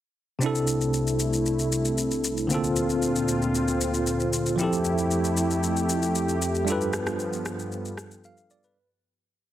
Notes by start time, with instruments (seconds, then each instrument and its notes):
0.39 analog synth pad C2 C3 A3 E4, tine electric piano C3 C4 D4, shaker
0.44 tine electric piano E4 A4
0.55 shaker
0.67 shaker
0.81 shaker
0.94 shaker
1.07 shaker
1.19 shaker
1.33 shaker
1.46 shaker
1.59 shaker
1.72 shaker
1.85 shaker
1.98 shaker
2.11 shaker
2.24 shaker
2.37 shaker
2.47 analog synth pad D2 A#2 C4 F4, tine electric piano D3 A#3 C4, shaker
2.53 tine electric piano F4 A4
2.64 shaker
2.76 shaker
2.89 shaker
3.02 shaker
3.16 shaker
3.28 shaker
3.42 shaker
3.55 shaker
3.68 shaker
3.81 shaker
3.94 shaker
4.07 shaker
4.20 shaker
4.33 shaker
4.46 shaker
4.56 analog synth pad F2 A3 E4 G4, tine electric piano F3 C4 E4, shaker
4.61 tine electric piano G4 A4
4.73 shaker
4.85 shaker
4.98 shaker
5.11 shaker
5.24 shaker
5.37 shaker
5.51 shaker
5.63 shaker
5.76 shaker
5.89 shaker
6.02 shaker
6.15 shaker
6.29 shaker
6.42 shaker
6.55 shaker
6.65 analog synth pad G2 F3 B3, tine electric piano G3 D4 F4, shaker
6.70 tine electric piano A4 B4
6.81 shaker
6.93 cross-stick, shaker
7.07 cross-stick, shaker
7.19 shaker
7.33 shaker
7.46 cross-stick, shaker
7.59 shaker
7.72 shaker
7.85 shaker
7.97 cross-stick, shaker
8.11 shaker
8.24 tine electric piano F5, shaker
8.37 shaker
8.50 tine electric piano D5, shaker
8.63 tine electric piano B4, shaker